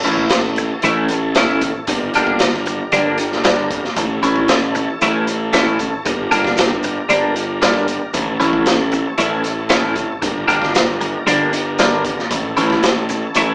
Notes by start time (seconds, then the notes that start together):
Already playing: E4 A4 C#5 A5
0.03 A1 E3 A3 C#4 E4, closed hi-hat, maracas
0.17 kick
0.29 muted clean electric guitar stroke, snare, closed hi-hat, maracas
0.56 muted clean electric guitar stroke, closed hi-hat, maracas
0.82 A1 E3 A3 C#4 E4, closed hi-hat, maracas
1.08 muted clean electric guitar stroke, closed hi-hat, maracas
1.35 E3 A3 C#4 E4, snare, closed hi-hat, maracas
1.61 muted clean electric guitar stroke, kick, closed hi-hat, maracas
1.86 G1 G4 A#4 D5 A#5, muted clean electric guitar stroke, kick, closed hi-hat, maracas
2.14 G1 D3 G3 A#3 D4, closed hi-hat, maracas
2.27 kick
2.39 muted clean electric guitar stroke, snare, closed hi-hat, maracas
2.54 snare
2.66 muted clean electric guitar stroke, closed hi-hat, maracas
2.92 G1 D3 G3 A#3 D4, closed hi-hat, maracas
3.18 muted clean electric guitar stroke, closed hi-hat, maracas
3.32 snare
3.44 D3 G3 A#3 D4, snare, closed hi-hat, maracas
3.71 muted clean electric guitar stroke, kick, closed hi-hat, maracas
3.84 snare
3.96 A1 E4 A4 C#5 A5, muted clean electric guitar stroke, kick, closed hi-hat, maracas
4.22 A1 E3 A3 C#4 E4, closed hi-hat, maracas
4.36 kick
4.48 muted clean electric guitar stroke, snare, closed hi-hat, maracas
4.75 muted clean electric guitar stroke, closed hi-hat, maracas
5.01 A1 E3 A3 C#4 E4, closed hi-hat, maracas
5.27 muted clean electric guitar stroke, closed hi-hat, maracas
5.53 E3 A3 C#4 E4, snare, closed hi-hat, maracas
5.79 muted clean electric guitar stroke, kick, closed hi-hat, maracas
6.04 G1 G4 A#4 D5 A#5, muted clean electric guitar stroke, kick, closed hi-hat, maracas
6.31 G1 D3 G3 A#3 D4, closed hi-hat, maracas
6.45 kick, snare
6.57 muted clean electric guitar stroke, snare, closed hi-hat, maracas
6.71 kick
6.83 muted clean electric guitar stroke, closed hi-hat, maracas
7.09 G1 D3 G3 A#3 D4, closed hi-hat, maracas
7.36 muted clean electric guitar stroke, closed hi-hat, maracas
7.62 D3 G3 A#3 D4, snare, closed hi-hat, maracas
7.88 muted clean electric guitar stroke, closed hi-hat, maracas
8.13 A1 E4 A4 C#5 A5, muted clean electric guitar stroke, kick, closed hi-hat, maracas
8.40 A1 E3 A3 C#4 E4, closed hi-hat, maracas
8.53 kick
8.66 muted clean electric guitar stroke, snare, closed hi-hat, maracas
8.92 muted clean electric guitar stroke, closed hi-hat, maracas
9.18 A1 E3 A3 C#4 E4, closed hi-hat, maracas
9.44 muted clean electric guitar stroke, closed hi-hat, maracas
9.69 E3 A3 C#4 E4, snare, closed hi-hat, maracas
9.96 muted clean electric guitar stroke, kick, closed hi-hat, maracas
10.22 G1 G4 A#4 D5 A#5, muted clean electric guitar stroke, kick, closed hi-hat, maracas
10.48 G1 D3 G3 A#3 D4, closed hi-hat, maracas
10.62 kick, snare
10.74 muted clean electric guitar stroke, snare, closed hi-hat, maracas
11.01 muted clean electric guitar stroke, closed hi-hat, maracas
11.26 G1 D3 G3 A#3 D4, closed hi-hat, maracas
11.53 muted clean electric guitar stroke, closed hi-hat, maracas
11.79 D3 G3 A#3 D4, snare, closed hi-hat, maracas
12.05 muted clean electric guitar stroke, kick, closed hi-hat, maracas
12.19 snare
12.31 A1 E4 A4 C#5 A5, muted clean electric guitar stroke, kick, closed hi-hat, maracas
12.57 A1 E3 A3 C#4 E4, closed hi-hat, maracas
12.70 kick, snare
12.83 muted clean electric guitar stroke, snare, closed hi-hat, maracas
13.09 muted clean electric guitar stroke, closed hi-hat, maracas
13.35 A1 E3 A3 C#4 E4, closed hi-hat, maracas